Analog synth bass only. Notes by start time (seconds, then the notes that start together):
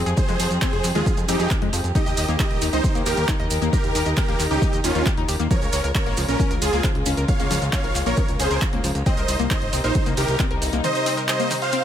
0.06 F2
0.29 F2
0.40 F2
0.51 F2
0.73 F1
0.84 F2
0.95 D#2
1.17 F2
1.28 F2
1.40 F2
1.62 F2
1.73 F2
1.84 F2
2.06 D#2
2.17 D#2
2.28 D#2
2.51 D#1
2.62 D#2
2.73 C#2
2.95 D#2
3.06 D#2
3.17 D#2
3.40 D#2
3.51 D#2
3.62 D#2
3.84 D#2
3.95 D#2
4.06 D#2
4.28 D#1
4.40 D#2
4.51 C#2
4.73 D#2
4.84 D#2
4.95 D#2
5.17 D#2
5.28 D#2
5.40 D#2
5.62 C#2
5.73 C#2
5.84 C#2
6.06 G#1
6.17 C#2
6.28 A#1
6.51 C#2
6.62 C#2
6.73 C#2
6.95 C#2
7.06 C#2
7.17 C#2
7.40 C#2
7.51 C#2
7.62 C#2
7.84 G#1
7.95 C#2
8.06 A#1
8.28 C#2
8.40 C#2
8.51 C#2
8.73 C#2
8.84 C#2
8.95 C#2
9.17 C2
9.28 C2
9.39 C2
9.62 G1
9.73 C2
9.84 A#1
10.06 C2
10.17 C2
10.28 C2
10.51 C2
10.62 C2
10.73 C2